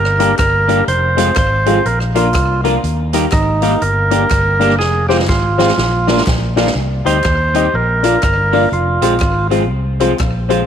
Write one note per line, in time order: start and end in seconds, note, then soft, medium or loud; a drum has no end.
0.00 0.32 G1 loud
0.00 0.36 A#4 medium
0.05 cross-stick medium
0.19 0.31 G3 medium
0.19 0.28 A#3 medium
0.19 0.31 A#3 medium
0.19 0.28 D4 medium
0.19 0.31 D4 medium
0.19 0.29 G4 medium
0.19 0.31 G4 medium
0.19 0.29 A#4 loud
0.19 closed hi-hat medium
0.39 0.81 G1 loud
0.39 0.85 A#4 loud
0.39 kick loud
0.39 cross-stick loud
0.39 clap loud
0.39 closed hi-hat medium
0.68 0.79 G3 medium
0.68 0.77 A#3 medium
0.68 0.80 A#3 medium
0.68 0.77 D4 medium
0.68 0.80 D4 medium
0.68 0.80 G4 loud
0.68 0.78 G4 medium
0.68 0.78 A#4 medium
0.68 closed hi-hat medium
0.88 1.29 F1 loud
0.88 1.37 C5 loud
0.88 closed hi-hat medium
1.17 1.29 F3 medium
1.17 1.26 G#3 medium
1.17 1.29 G#3 medium
1.17 1.26 C4 medium
1.17 1.29 C4 medium
1.17 1.27 F4 medium
1.17 1.29 F4 medium
1.17 1.27 G#4 medium
1.17 closed hi-hat loud
1.36 1.78 G#1 medium
1.36 1.88 C5 loud
1.36 kick loud
1.36 cross-stick loud
1.36 clap loud
1.36 closed hi-hat medium
1.66 1.77 F3 medium
1.66 1.75 G#3 medium
1.66 1.78 G#3 medium
1.66 1.75 C4 medium
1.66 1.78 C4 medium
1.66 1.76 F4 medium
1.66 1.78 F4 medium
1.66 1.76 G#4 loud
1.66 closed hi-hat medium
1.85 2.35 A#1 medium
1.85 1.99 A#4 medium
1.85 closed hi-hat medium
2.00 cross-stick medium
2.15 2.27 F3 medium
2.15 2.24 A#3 medium
2.15 2.27 A#3 medium
2.15 2.24 D4 medium
2.15 2.27 D4 medium
2.15 2.61 F4 medium
2.15 2.25 F4 medium
2.15 2.27 F4 medium
2.15 2.25 A#4 loud
2.15 closed hi-hat medium
2.34 2.77 C2 medium
2.34 kick loud
2.34 cross-stick loud
2.34 clap loud
2.34 closed hi-hat medium
2.64 2.76 F3 loud
2.64 2.73 A#3 medium
2.64 2.76 A#3 medium
2.64 2.73 D4 medium
2.64 2.76 D4 medium
2.64 2.73 F4 medium
2.64 2.76 F4 loud
2.64 2.74 A#4 loud
2.64 closed hi-hat medium
2.84 3.25 D#2 loud
2.84 closed hi-hat medium
3.13 3.25 G3 medium
3.13 3.22 A#3 medium
3.13 3.25 A#3 medium
3.13 3.22 D#4 medium
3.13 3.25 D#4 medium
3.13 3.23 G4 medium
3.13 3.25 G4 medium
3.13 3.23 A#4 medium
3.13 closed hi-hat loud
3.32 3.74 G#1 loud
3.32 3.83 D#4 medium
3.32 kick loud
3.32 cross-stick loud
3.32 clap loud
3.32 closed hi-hat medium
3.62 3.74 G3 medium
3.62 3.71 A#3 medium
3.62 3.74 A#3 medium
3.62 3.71 D#4 medium
3.62 3.74 D#4 medium
3.62 3.72 G4 medium
3.62 3.74 G4 medium
3.62 3.72 A#4 loud
3.62 closed hi-hat medium
3.81 4.23 G1 loud
3.81 4.76 A#4 loud
3.81 muted clean electric guitar stroke medium
3.81 closed hi-hat medium
4.11 4.22 G3 medium
4.11 4.20 A#3 medium
4.11 4.23 A#3 medium
4.11 4.20 D4 medium
4.11 4.23 D4 medium
4.11 4.20 G4 medium
4.11 4.23 G4 medium
4.11 4.21 A#4 loud
4.11 closed hi-hat medium
4.31 4.80 G1 loud
4.31 kick loud
4.31 cross-stick loud
4.31 clap medium
4.31 closed hi-hat medium
4.59 4.72 G3 medium
4.59 4.69 A#3 medium
4.59 4.72 A#3 medium
4.59 4.69 D4 medium
4.59 4.72 D4 loud
4.59 4.69 G4 medium
4.59 4.72 G4 loud
4.59 4.69 A#4 loud
4.59 closed hi-hat medium
4.70 cross-stick medium
4.79 5.29 F1 loud
4.79 5.07 G#4 loud
4.79 snare medium
5.09 5.21 F3 medium
5.09 5.21 G#3 medium
5.09 5.18 C4 medium
5.09 5.21 C4 loud
5.09 5.18 F4 medium
5.09 5.21 F4 medium
5.09 5.18 G4 medium
5.09 5.18 G#4 medium
5.09 5.18 C5 loud
5.09 snare medium
5.19 snare medium
5.28 5.71 G#1 medium
5.28 6.23 F4 medium
5.28 kick loud
5.28 snare medium
5.28 clap medium
5.58 5.70 F3 medium
5.58 5.70 G#3 medium
5.58 5.67 C4 medium
5.58 5.70 C4 medium
5.58 5.67 F4 medium
5.58 5.70 F4 medium
5.58 5.67 G#4 medium
5.58 5.67 C5 loud
5.58 snare medium
5.68 snare medium
5.78 6.19 A#1 loud
5.78 snare medium
6.07 6.19 F3 medium
6.07 6.19 A#3 medium
6.07 6.16 D4 medium
6.07 6.19 D4 medium
6.07 6.16 F4 medium
6.07 6.19 F4 medium
6.07 6.17 A#4 medium
6.07 6.17 D5 loud
6.07 snare medium
6.17 snare medium
6.27 6.69 A#1 loud
6.27 kick loud
6.27 snare loud
6.27 clap medium
6.56 6.68 F3 medium
6.56 6.68 A#3 medium
6.56 6.65 D4 medium
6.56 6.68 D4 medium
6.56 6.65 F4 medium
6.56 6.68 F4 medium
6.56 6.66 A#4 medium
6.56 6.66 D5 medium
6.56 snare loud
6.67 snare medium
6.75 7.01 C2 loud
7.05 7.22 D2 medium
7.05 7.17 G3 medium
7.05 7.17 C4 medium
7.05 7.14 D#4 medium
7.05 7.17 D#4 medium
7.05 7.14 G4 medium
7.05 7.17 G4 medium
7.05 7.14 C5 medium
7.05 7.76 C5 loud
7.05 7.15 D#5 medium
7.05 closed hi-hat loud
7.24 7.67 D#2 loud
7.24 kick loud
7.24 cross-stick loud
7.24 clap medium
7.54 7.66 G3 medium
7.54 7.66 C4 medium
7.54 7.63 D#4 medium
7.54 7.66 D#4 medium
7.54 7.64 G4 medium
7.54 7.66 G4 medium
7.54 7.64 C5 medium
7.54 7.64 D#5 medium
7.54 closed hi-hat medium
7.74 8.16 A#1 loud
7.74 8.23 A#4 loud
8.03 8.15 F3 medium
8.03 8.15 A#3 medium
8.03 8.12 D4 medium
8.03 8.15 D4 medium
8.03 8.13 F4 medium
8.03 8.15 F4 medium
8.03 8.13 A#4 medium
8.03 8.13 D5 loud
8.03 closed hi-hat loud
8.23 8.65 G1 loud
8.23 8.69 A#4 medium
8.23 kick loud
8.23 cross-stick loud
8.23 clap loud
8.52 8.64 F3 medium
8.52 8.64 A#3 medium
8.52 8.62 D4 medium
8.52 8.64 D4 medium
8.52 8.62 F4 medium
8.52 8.64 F4 loud
8.52 8.62 A#4 medium
8.52 8.62 D5 loud
8.52 open hi-hat soft
8.72 8.97 F1 loud
8.72 9.48 F4 medium
8.72 hi-hat pedal medium
9.01 9.18 A#1 medium
9.01 9.13 F3 medium
9.01 9.13 G#3 medium
9.01 9.11 C4 medium
9.01 9.13 C4 medium
9.01 9.11 F4 medium
9.01 9.14 F4 medium
9.01 9.11 G#4 medium
9.01 9.11 C5 loud
9.01 closed hi-hat loud
9.20 9.70 G#1 medium
9.20 kick loud
9.20 cross-stick loud
9.20 clap medium
9.50 9.62 F3 medium
9.50 9.62 G#3 medium
9.50 9.60 C4 medium
9.50 9.62 C4 medium
9.50 9.60 F4 medium
9.50 9.63 F4 medium
9.50 9.60 G#4 medium
9.50 9.60 C5 medium
9.50 closed hi-hat medium
9.70 10.12 C2 loud
10.00 10.11 F3 medium
10.00 10.12 G#3 medium
10.00 10.09 C4 medium
10.00 10.12 C4 medium
10.00 10.09 F4 medium
10.00 10.12 F4 medium
10.00 10.09 G#4 medium
10.00 10.10 C5 loud
10.00 closed hi-hat medium
10.19 10.62 A#1 loud
10.19 kick loud
10.19 cross-stick loud
10.19 clap loud
10.49 10.60 F3 medium
10.49 10.61 G#3 medium
10.49 10.58 C4 medium
10.49 10.61 C4 medium
10.49 10.58 F4 medium
10.49 10.61 F4 medium
10.49 10.58 G#4 medium
10.49 10.59 C5 medium
10.49 closed hi-hat medium